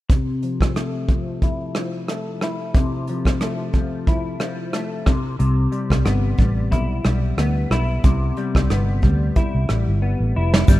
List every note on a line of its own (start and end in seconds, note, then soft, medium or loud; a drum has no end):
0.10 2.75 C3 medium
0.10 kick loud
0.10 closed hi-hat medium
0.42 1.08 F3 soft
0.42 closed hi-hat soft
0.61 kick medium
0.61 cross-stick medium
0.76 2.08 A3 medium
0.76 cross-stick medium
0.76 closed hi-hat medium
1.08 1.75 F3 soft
1.08 kick medium
1.08 closed hi-hat soft
1.42 2.42 E4 medium
1.42 kick medium
1.42 closed hi-hat medium
1.75 3.08 F3 soft
1.75 cross-stick medium
1.75 closed hi-hat soft
2.08 3.40 A3 medium
2.08 cross-stick medium
2.08 closed hi-hat medium
2.41 4.07 E4 medium
2.41 cross-stick medium
2.41 closed hi-hat soft
2.75 5.05 C3 medium
2.75 kick loud
2.75 closed hi-hat medium
3.07 3.73 F3 medium
3.07 closed hi-hat soft
3.25 kick medium
3.25 cross-stick medium
3.41 4.72 A3 medium
3.41 cross-stick medium
3.41 closed hi-hat medium
3.73 4.39 F3 soft
3.73 kick medium
3.73 closed hi-hat soft
4.07 6.71 E4 medium
4.07 kick medium
4.07 closed hi-hat medium
4.40 5.14 F3 medium
4.40 cross-stick medium
4.40 closed hi-hat soft
4.73 5.14 A3 medium
4.73 cross-stick medium
4.73 closed hi-hat medium
5.06 5.38 C3 medium
5.06 kick medium
5.06 cross-stick medium
5.06 closed hi-hat soft
5.39 5.66 C2 medium
5.39 8.03 C3 medium
5.39 closed hi-hat medium
5.72 6.38 G3 soft
5.72 closed hi-hat soft
5.90 6.02 C2 medium
5.90 kick medium
5.90 cross-stick medium
6.05 6.32 G1 medium
6.05 7.38 B3 medium
6.05 cross-stick medium
6.05 closed hi-hat medium
6.38 6.72 A1 medium
6.38 7.04 G3 medium
6.38 kick medium
6.38 closed hi-hat soft
6.72 6.98 B1 medium
6.72 7.70 E4 medium
6.72 kick medium
6.72 closed hi-hat medium
7.04 7.31 B1 medium
7.04 8.37 G3 medium
7.04 cross-stick medium
7.04 closed hi-hat soft
7.37 7.64 D2 medium
7.37 8.70 B3 medium
7.37 cross-stick medium
7.37 closed hi-hat medium
7.70 7.97 B1 medium
7.70 9.35 E4 medium
7.70 cross-stick medium
7.70 closed hi-hat soft
8.04 8.31 C2 medium
8.04 10.68 C3 medium
8.04 kick loud
8.04 closed hi-hat medium
8.37 9.03 G3 medium
8.37 closed hi-hat soft
8.55 8.67 C2 medium
8.55 kick medium
8.55 cross-stick medium
8.70 9.05 G1 medium
8.70 10.02 B3 medium
8.70 cross-stick medium
8.70 closed hi-hat medium
9.02 9.30 D2 medium
9.02 9.68 G3 soft
9.02 kick medium
9.02 closed hi-hat soft
9.36 10.35 E4 medium
9.36 kick medium
9.36 closed hi-hat medium
9.55 9.66 C2 medium
9.69 9.84 A1 medium
9.69 10.69 G3 medium
9.69 cross-stick medium
9.69 closed hi-hat soft
9.87 10.14 G1 medium
10.02 10.80 B3 medium
10.20 10.32 A1 medium
10.36 10.62 F1 medium
10.36 10.76 E4 medium
10.54 snare medium
10.68 10.80 G1 loud
10.68 10.80 G3 medium
10.68 kick loud
10.68 closed hi-hat medium
10.68 shaker medium